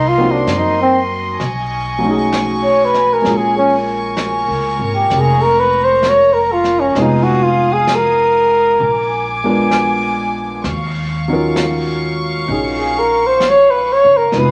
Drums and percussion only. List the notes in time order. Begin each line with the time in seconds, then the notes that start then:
0.47 brush sweep, snare, hi-hat pedal
1.40 brush sweep, snare
2.32 brush sweep, snare, hi-hat pedal
2.94 snare
3.25 brush sweep, snare
4.17 brush sweep, snare, hi-hat pedal
5.10 brush sweep, snare
6.03 brush sweep, snare, hi-hat pedal
6.64 snare
6.95 brush sweep, snare
7.87 brush sweep, snare, hi-hat pedal
8.80 brush sweep
9.71 brush sweep, snare, hi-hat pedal
10.64 brush sweep, snare
11.56 brush sweep, snare, hi-hat pedal
12.49 brush sweep
13.40 brush sweep, snare, hi-hat pedal
14.32 brush sweep, snare